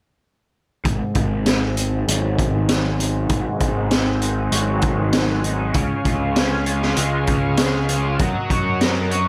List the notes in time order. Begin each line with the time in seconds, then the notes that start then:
0.84 G#1 G#2 G#4 C5 F#5, kick, closed hi-hat
1.15 G#1 D#4, kick, closed hi-hat
1.46 C4, snare, closed hi-hat
1.77 D#4, closed hi-hat
2.08 G#1 F#3, closed hi-hat
2.39 D#3, kick, closed hi-hat
2.69 F#3, snare, closed hi-hat
3.00 D#4, closed hi-hat
3.29 G#1 G#2, kick, closed hi-hat
3.60 G#1 D#4, kick, closed hi-hat
3.91 C4, snare, closed hi-hat
4.21 D#4, closed hi-hat
4.52 G#1 F#3, closed hi-hat
4.81 D#3, kick, closed hi-hat
5.13 F#3, snare, closed hi-hat
5.44 D#4, closed hi-hat
5.74 C#2 C#3 C#5 F5, kick, closed hi-hat
6.05 C#2 F4, kick, closed hi-hat
6.36 C#4, snare, closed hi-hat
6.66 F4, closed hi-hat
6.82 snare
6.96 C#2 G#3, closed hi-hat
7.27 C#3, kick, closed hi-hat
7.57 G#3, snare, closed hi-hat
7.88 F4, closed hi-hat
8.19 F#2 F#3 A#4 D#5 F#5, kick, closed hi-hat
8.50 F#2 C#5, kick, closed hi-hat
8.81 A#4, snare, closed hi-hat
9.11 C#5, closed hi-hat